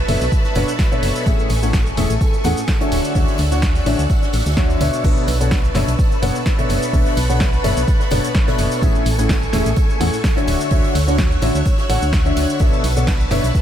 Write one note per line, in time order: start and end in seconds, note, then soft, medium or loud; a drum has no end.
0.00 5.05 F#4 medium
0.00 1.23 B4 medium
0.00 5.05 B4 medium
0.00 5.04 E5 medium
0.00 1.23 A5 medium
0.00 1.26 A5 medium
0.00 1.23 B5 medium
0.00 1.23 C#6 medium
0.00 1.23 E6 medium
0.08 0.18 F#1 loud
0.08 0.22 B2 medium
0.08 0.22 D4 medium
0.08 0.22 A4 medium
0.08 0.22 C#5 medium
0.08 0.22 E5 loud
0.08 open hi-hat loud
0.08 tambourine medium
0.20 0.29 B1 medium
0.20 tambourine soft
0.20 cabasa medium
0.32 kick loud
0.32 tambourine medium
0.32 cabasa medium
0.45 snare medium
0.45 tambourine soft
0.45 cabasa soft
0.55 0.65 F#1 loud
0.55 0.70 B2 medium
0.55 0.70 D4 medium
0.55 0.70 A4 medium
0.55 0.70 C#5 medium
0.55 0.70 F#5 loud
0.55 open hi-hat loud
0.55 tambourine medium
0.68 tambourine soft
0.68 cabasa medium
0.79 kick loud
0.79 snare loud
0.79 tambourine medium
0.79 cabasa medium
0.92 1.24 B2 medium
0.92 1.24 D4 medium
0.92 1.24 A4 medium
0.92 1.24 C#5 medium
0.92 1.24 E5 loud
0.92 tambourine soft
0.92 cabasa soft
1.03 1.12 F#1 medium
1.03 open hi-hat loud
1.03 tambourine medium
1.15 tambourine soft
1.15 cabasa medium
1.26 1.36 A1 loud
1.26 1.48 A2 medium
1.26 1.48 C#4 medium
1.26 1.48 G#4 medium
1.26 1.48 A4 medium
1.26 2.90 A4 medium
1.26 1.48 E5 loud
1.26 2.90 G#5 medium
1.26 5.01 C#6 medium
1.26 kick loud
1.26 tambourine medium
1.26 cabasa medium
1.39 cabasa soft
1.50 1.93 A1 medium
1.50 open hi-hat loud
1.50 tambourine medium
1.61 1.75 A2 medium
1.61 1.75 C#4 medium
1.61 1.75 G#4 medium
1.61 1.75 A4 medium
1.61 1.75 F#5 medium
1.61 5.04 G#5 medium
1.61 closed hi-hat soft
1.61 cabasa medium
1.73 kick loud
1.73 snare loud
1.73 tambourine soft
1.73 tambourine medium
1.73 cabasa medium
1.86 cabasa soft
1.97 2.07 E1 loud
1.97 2.11 A2 medium
1.97 2.11 C#4 medium
1.97 2.11 G#4 medium
1.97 2.11 A4 medium
1.97 2.11 E5 loud
1.97 open hi-hat loud
1.97 tambourine medium
2.10 2.18 A1 medium
2.10 closed hi-hat soft
2.10 tambourine soft
2.10 cabasa medium
2.21 kick loud
2.21 tambourine medium
2.21 tambourine soft
2.21 cabasa medium
2.33 tambourine soft
2.33 cabasa soft
2.44 2.54 E2 medium
2.44 2.59 A2 medium
2.44 2.59 C#4 medium
2.44 2.59 G#4 medium
2.44 2.59 A4 medium
2.44 2.59 F#5 loud
2.44 open hi-hat loud
2.44 tambourine medium
2.57 tambourine soft
2.57 cabasa medium
2.68 kick loud
2.68 snare loud
2.68 tambourine medium
2.68 cabasa medium
2.81 3.13 D3 medium
2.81 3.13 D4 medium
2.81 3.13 F#4 medium
2.81 3.13 C#5 medium
2.81 3.13 E5 loud
2.81 closed hi-hat soft
2.81 tambourine soft
2.81 cabasa soft
2.92 3.01 D1 medium
2.92 5.02 D5 medium
2.92 5.02 E6 medium
2.92 5.02 F#6 medium
2.92 open hi-hat loud
2.92 tambourine medium
3.04 cabasa medium
3.15 3.25 D2 loud
3.15 3.37 D3 loud
3.15 3.37 D4 medium
3.15 3.37 F#4 medium
3.15 3.37 C#5 medium
3.15 3.37 E5 loud
3.15 kick loud
3.15 open hi-hat medium
3.15 tambourine soft
3.15 cabasa medium
3.28 snare soft
3.28 tambourine soft
3.28 cabasa soft
3.38 3.82 D2 medium
3.38 snare medium
3.38 open hi-hat loud
3.38 tambourine medium
3.51 3.64 D3 medium
3.51 3.64 D4 medium
3.51 3.64 F#4 medium
3.51 3.64 C#5 medium
3.51 3.64 F#5 medium
3.51 snare medium
3.51 tambourine soft
3.51 cabasa medium
3.62 kick loud
3.62 snare loud
3.62 tambourine medium
3.62 tambourine soft
3.62 cabasa medium
3.75 open hi-hat medium
3.75 tambourine soft
3.75 cabasa soft
3.86 3.96 A1 loud
3.86 4.00 D3 medium
3.86 4.00 D4 medium
3.86 4.00 F#4 medium
3.86 4.00 C#5 medium
3.86 4.00 E5 loud
3.86 open hi-hat loud
3.86 tambourine medium
3.99 4.07 D2 medium
3.99 tambourine soft
3.99 cabasa medium
4.10 kick loud
4.10 tambourine medium
4.10 tambourine soft
4.10 cabasa medium
4.22 snare medium
4.22 tambourine soft
4.22 cabasa soft
4.33 4.43 A1 medium
4.33 snare medium
4.33 open hi-hat loud
4.33 tambourine medium
4.40 snare medium
4.40 tambourine medium
4.46 4.76 D2 loud
4.46 snare medium
4.46 tambourine medium
4.46 tambourine soft
4.46 cabasa medium
4.51 snare medium
4.51 tambourine medium
4.57 4.78 D3 loud
4.57 4.78 D4 medium
4.57 4.78 F#4 medium
4.57 4.78 C#5 medium
4.57 4.78 E5 loud
4.57 kick loud
4.57 snare loud
4.57 tambourine medium
4.57 tambourine soft
4.57 cabasa medium
4.70 tambourine soft
4.70 cabasa soft
4.81 4.90 D2 medium
4.81 5.01 B2 medium
4.81 5.01 D4 medium
4.81 5.01 F#4 medium
4.81 5.01 C#5 medium
4.81 5.01 E5 loud
4.81 open hi-hat loud
4.81 tambourine medium
4.93 tambourine soft
4.93 cabasa medium
5.04 5.14 B1 loud
5.04 5.26 B2 medium
5.04 5.26 D4 medium
5.04 5.26 A4 medium
5.04 8.79 B4 medium
5.04 5.26 C#5 medium
5.04 5.26 E5 loud
5.04 8.79 A5 medium
5.04 8.79 B5 medium
5.04 13.62 C#6 medium
5.04 6.91 E6 medium
5.04 kick loud
5.04 tambourine medium
5.04 tambourine loud
5.04 crash loud
5.04 cabasa medium
5.17 cabasa soft
5.28 5.71 B1 medium
5.28 open hi-hat loud
5.28 tambourine medium
5.41 5.53 B2 medium
5.41 5.53 D4 medium
5.41 5.53 A4 medium
5.41 5.53 C#5 medium
5.41 5.53 F#5 medium
5.41 closed hi-hat soft
5.41 tambourine soft
5.41 cabasa medium
5.51 kick loud
5.51 snare loud
5.51 tambourine loud
5.51 tambourine medium
5.51 cabasa medium
5.64 cabasa soft
5.75 5.85 F#1 loud
5.75 5.89 B2 medium
5.75 5.89 D4 medium
5.75 5.89 A4 medium
5.75 5.89 C#5 medium
5.75 5.89 E5 loud
5.75 snare medium
5.75 open hi-hat loud
5.75 tambourine medium
5.88 5.96 B1 medium
5.88 closed hi-hat soft
5.88 tambourine soft
5.88 cabasa medium
5.99 kick loud
5.99 tambourine soft
5.99 tambourine medium
5.99 cabasa medium
6.12 tambourine soft
6.12 cabasa soft
6.22 6.32 F#1 loud
6.22 6.37 B2 medium
6.22 6.36 D4 medium
6.22 6.37 A4 medium
6.22 6.36 C#5 medium
6.22 6.37 F#5 loud
6.22 open hi-hat loud
6.22 tambourine medium
6.35 tambourine soft
6.35 cabasa medium
6.46 kick loud
6.46 snare loud
6.46 tambourine medium
6.46 cabasa medium
6.58 6.91 B2 medium
6.58 6.91 D4 medium
6.58 6.91 A4 medium
6.58 6.91 C#5 medium
6.58 6.91 E5 loud
6.58 closed hi-hat soft
6.58 tambourine soft
6.58 cabasa soft
6.69 6.79 F#1 medium
6.69 open hi-hat loud
6.69 tambourine medium
6.70 tambourine medium
6.83 tambourine soft
6.83 cabasa medium
6.93 7.03 B1 loud
6.93 7.15 B2 loud
6.93 7.15 D4 medium
6.93 7.15 A4 medium
6.93 7.15 C#5 medium
6.93 7.15 E5 loud
6.93 8.80 F#6 medium
6.93 kick loud
6.93 open hi-hat medium
6.93 tambourine soft
6.93 cabasa medium
7.06 snare soft
7.06 cabasa soft
7.17 7.60 B1 medium
7.17 snare soft
7.17 open hi-hat loud
7.17 tambourine medium
7.30 7.42 B2 medium
7.30 7.42 D4 medium
7.30 7.42 A4 medium
7.30 7.42 C#5 medium
7.30 7.42 F#5 medium
7.30 snare medium
7.30 tambourine soft
7.30 cabasa medium
7.40 kick loud
7.40 snare loud
7.40 tambourine medium
7.40 cabasa medium
7.53 cabasa soft
7.64 7.74 F#1 loud
7.64 7.78 B2 medium
7.64 7.78 D4 medium
7.64 7.78 A4 medium
7.64 7.78 C#5 medium
7.64 7.78 E5 loud
7.64 open hi-hat loud
7.64 tambourine medium
7.77 7.85 B1 medium
7.77 tambourine soft
7.77 cabasa medium
7.88 kick loud
7.88 tambourine medium
7.88 tambourine soft
7.88 cabasa medium
8.01 snare medium
8.01 tambourine soft
8.01 cabasa soft
8.11 8.21 F#1 loud
8.11 8.25 B2 loud
8.11 8.25 D4 medium
8.11 8.25 A4 medium
8.11 8.25 C#5 medium
8.11 8.25 F#5 loud
8.11 snare loud
8.11 open hi-hat loud
8.11 tambourine medium
8.11 tambourine loud
8.24 closed hi-hat soft
8.24 cabasa medium
8.35 kick loud
8.35 snare loud
8.35 tambourine soft
8.35 tambourine medium
8.35 cabasa medium
8.48 8.80 B2 medium
8.48 8.80 D4 medium
8.48 8.80 A4 medium
8.48 8.80 C#5 medium
8.48 8.80 E5 loud
8.48 snare loud
8.48 tambourine medium
8.48 tambourine soft
8.48 cabasa soft
8.58 8.68 F#1 medium
8.58 closed hi-hat soft
8.58 open hi-hat loud
8.58 tambourine medium
8.71 tambourine soft
8.71 tambourine medium
8.71 cabasa medium
8.82 8.92 A1 loud
8.82 9.04 A2 medium
8.82 9.04 C#4 medium
8.82 9.04 G#4 medium
8.82 10.46 A4 medium
8.82 9.04 A4 medium
8.82 9.04 E5 loud
8.82 10.46 G#5 medium
8.82 kick loud
8.82 tambourine soft
8.82 tambourine loud
8.82 cabasa medium
8.95 cabasa soft
9.06 9.49 A1 medium
9.06 open hi-hat loud
9.06 tambourine medium
9.19 9.31 A2 medium
9.19 9.31 C#4 medium
9.19 9.31 G#4 medium
9.19 9.31 A4 medium
9.19 9.31 F#5 medium
9.19 closed hi-hat soft
9.19 tambourine soft
9.19 cabasa medium
9.29 kick loud
9.29 snare loud
9.29 tambourine medium
9.29 cabasa medium
9.42 cabasa soft
9.53 9.63 E1 loud
9.53 9.67 A2 medium
9.53 9.67 C#4 medium
9.53 9.67 G#4 medium
9.53 9.67 A4 medium
9.53 9.67 E5 loud
9.53 snare medium
9.53 open hi-hat loud
9.53 tambourine medium
9.53 tambourine loud
9.66 9.74 A1 medium
9.66 closed hi-hat soft
9.66 tambourine soft
9.66 cabasa medium
9.76 kick loud
9.76 tambourine medium
9.76 cabasa medium
9.90 tambourine soft
9.90 cabasa soft
10.00 10.10 E2 medium
10.00 10.14 A2 loud
10.00 10.14 C#4 medium
10.00 10.14 G#4 medium
10.00 10.14 A4 medium
10.00 10.14 F#5 loud
10.00 open hi-hat loud
10.00 tambourine medium
10.00 tambourine loud
10.13 cabasa medium
10.24 kick loud
10.24 snare loud
10.24 tambourine medium
10.24 cabasa medium
10.37 10.69 D3 medium
10.37 10.69 D4 medium
10.37 10.69 F#4 medium
10.37 10.69 C#5 medium
10.37 10.69 E5 loud
10.37 closed hi-hat soft
10.37 tambourine soft
10.37 cabasa soft
10.48 10.57 D1 medium
10.48 12.58 C#5 medium
10.48 13.62 E6 medium
10.48 12.58 F#6 medium
10.48 open hi-hat loud
10.48 tambourine loud
10.48 tambourine medium
10.60 tambourine soft
10.60 cabasa medium
10.70 10.81 D2 loud
10.70 10.93 D3 medium
10.70 10.93 D4 medium
10.70 10.93 F#4 medium
10.70 10.93 C#5 medium
10.70 10.93 E5 loud
10.70 kick loud
10.70 open hi-hat medium
10.70 tambourine medium
10.70 cabasa medium
10.84 snare soft
10.84 cabasa soft
10.95 11.38 D2 medium
10.95 snare soft
10.95 open hi-hat loud
10.95 tambourine medium
11.07 11.20 D3 medium
11.07 11.20 D4 medium
11.07 11.20 F#4 medium
11.07 11.20 C#5 medium
11.07 11.20 F#5 loud
11.07 snare medium
11.07 tambourine soft
11.07 cabasa medium
11.18 kick loud
11.18 snare loud
11.18 tambourine soft
11.18 tambourine medium
11.18 cabasa medium
11.32 cabasa soft
11.42 11.52 A1 loud
11.42 11.56 D3 medium
11.42 11.56 D4 medium
11.42 11.56 F#4 medium
11.42 11.56 C#5 medium
11.42 11.56 E5 loud
11.42 open hi-hat loud
11.42 tambourine medium
11.55 11.63 D2 medium
11.55 tambourine soft
11.55 cabasa medium
11.65 kick loud
11.65 tambourine medium
11.65 cabasa medium
11.78 snare medium
11.78 tambourine soft
11.78 cabasa soft
11.89 11.99 A1 medium
11.89 12.03 D3 loud
11.89 12.03 D4 medium
11.89 12.03 F#4 medium
11.89 12.03 C#5 medium
11.89 12.03 F#5 loud
11.89 open hi-hat loud
11.89 tambourine loud
11.89 tambourine medium
12.01 12.32 D2 medium
12.01 tambourine soft
12.01 cabasa medium
12.13 kick loud
12.13 snare loud
12.13 tambourine medium
12.13 cabasa medium
12.25 12.58 D3 medium
12.25 12.58 D4 medium
12.25 12.58 F#4 medium
12.25 12.58 C#5 medium
12.25 12.58 E5 loud
12.25 tambourine soft
12.25 cabasa soft
12.37 12.46 D2 medium
12.37 open hi-hat loud
12.37 tambourine loud
12.37 tambourine medium
12.50 tambourine soft
12.50 cabasa medium
12.59 12.70 B1 loud
12.59 12.82 B2 loud
12.59 12.82 D4 medium
12.59 12.82 A4 medium
12.59 13.62 B4 medium
12.59 12.82 C#5 medium
12.59 12.82 E5 loud
12.59 13.62 A5 medium
12.59 13.62 B5 medium
12.59 kick loud
12.59 tambourine medium
12.59 cabasa medium
12.73 cabasa soft
12.84 13.27 B1 medium
12.84 open hi-hat loud
12.84 tambourine medium
12.96 13.09 B2 medium
12.96 13.09 D4 medium
12.96 13.09 A4 medium
12.96 13.09 C#5 medium
12.96 13.09 F#5 medium
12.96 closed hi-hat soft
12.96 tambourine soft
12.96 cabasa medium
13.07 kick loud
13.07 snare loud
13.07 tambourine soft
13.07 tambourine loud
13.07 cabasa medium
13.20 cabasa soft
13.31 13.41 F#1 loud
13.31 13.45 B2 medium
13.31 13.45 D4 medium
13.31 13.45 A4 medium
13.31 13.45 C#5 medium
13.31 13.45 E5 loud
13.31 snare medium
13.31 open hi-hat loud
13.31 tambourine medium
13.44 13.52 B1 medium
13.44 closed hi-hat soft
13.44 tambourine soft
13.44 cabasa medium
13.55 kick loud
13.55 tambourine soft
13.55 tambourine medium
13.55 cabasa medium